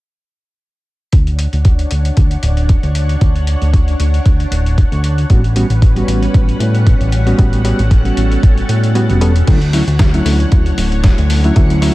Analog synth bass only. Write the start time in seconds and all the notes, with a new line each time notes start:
1.13 D2
1.53 D2
1.91 D2
2.17 D2
2.43 D1
2.83 D2
3.21 D2
3.62 D2
4.00 D2
4.26 D2
4.51 D1
4.92 D2
5.30 A1
5.70 A1
6.07 A1
6.35 A1
6.60 A2
7.00 A1
7.39 A1
7.79 A1
8.17 A1
8.43 A1
8.69 A2
9.10 E1
9.48 D2
9.87 D2
10.25 D2
10.52 D2
10.78 D1
11.18 D2
11.56 D2